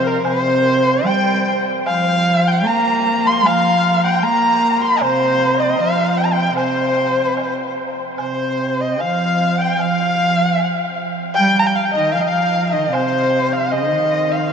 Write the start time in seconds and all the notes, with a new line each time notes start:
Already playing: C3
0.04 A#4
0.21 C3 C5, high woodblock
0.26 C5
1.03 G3 G5, high woodblock, low woodblock
1.86 F3 F5, high woodblock
2.47 G5
2.63 A#3 A#5
2.67 A#5
3.25 C6
3.44 F3 F5, high woodblock
4.04 G5
4.23 A#3 A#5
4.81 C6
4.95 D#5
5.01 C3 C5, high woodblock
5.57 D#5
5.61 C5
5.67 D#5 G5
5.78 F3 F5
6.17 G5
6.25 A#5
6.31 G5
6.56 C3 C5, high woodblock
7.37 high woodblock, low woodblock
8.18 C3 C5, high woodblock
8.81 D#5
8.92 G5
8.98 F3 F5, high woodblock
9.58 G5
9.77 F3 F5, high woodblock
9.81 F5
10.58 high woodblock
11.34 G5, high woodblock
11.38 G3
11.59 A#5
11.67 G5
11.76 F5
11.85 G5
11.93 D#3 D#5
12.12 F3 F5, high woodblock
12.21 D#5
12.25 F3 F5
12.67 D#5 F5
12.73 D#3 D#5
12.85 D#5
12.91 C3 C5, high woodblock
13.53 F5
13.71 D#3 D#5, high woodblock, low woodblock
14.32 F5
14.36 F5